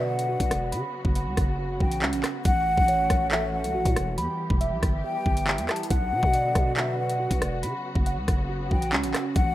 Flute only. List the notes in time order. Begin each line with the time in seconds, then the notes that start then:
0.08 F#5
1.80 G5
2.45 F#5
3.31 E5
3.53 F#5
5.04 G5
5.69 A5
5.90 F#5
6.77 E5
6.98 F#5
8.71 G5
9.36 F#5